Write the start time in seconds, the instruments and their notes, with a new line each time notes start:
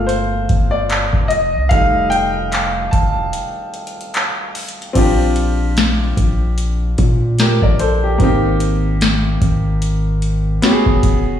Already playing: 808-style bass G1, grand piano A3 A#3 F4 F5 G5
0.07 grand piano C5, closed hi-hat
0.49 808-style bass G1, kick, closed hi-hat
0.71 grand piano D5
0.90 clap, closed hi-hat
1.13 808-style bass F1, kick
1.28 grand piano D#5, closed hi-hat
1.54 808-style bass C2
1.69 808-style bass F1, grand piano G3 A3 D#4 F5, kick, closed hi-hat
2.10 grand piano G5, closed hi-hat
2.52 clap, closed hi-hat
2.91 808-style bass F1, grand piano A5, kick, closed hi-hat
3.33 closed hi-hat
3.74 closed hi-hat
3.87 closed hi-hat
4.01 closed hi-hat
4.14 clap, closed hi-hat
4.55 closed hi-hat, open hi-hat
4.68 closed hi-hat
4.82 closed hi-hat
4.93 808-style bass A#1, grand piano C4 D4 F4, kick, closed hi-hat, crash
4.98 grand piano G4
5.36 closed hi-hat
5.77 snare, closed hi-hat
6.17 808-style bass A#1, kick, closed hi-hat
6.58 closed hi-hat
6.98 808-style bass A#2, kick, closed hi-hat
7.39 grand piano G4 A#4, snare, closed hi-hat
7.62 808-style bass A#1, grand piano A#4 D5, kick
7.79 grand piano A4 C5, closed hi-hat
8.04 grand piano G4
8.18 808-style bass G#1, grand piano A#3 C4 D#4, kick, closed hi-hat
8.23 grand piano G4
8.60 closed hi-hat
9.01 snare, closed hi-hat
9.41 808-style bass G#1, kick, closed hi-hat
9.82 closed hi-hat
10.22 closed hi-hat
10.62 grand piano B3 C#4 F#4 G4, snare, closed hi-hat
10.71 grand piano G#4
10.86 808-style bass E1, kick
11.03 808-style bass E1, kick, closed hi-hat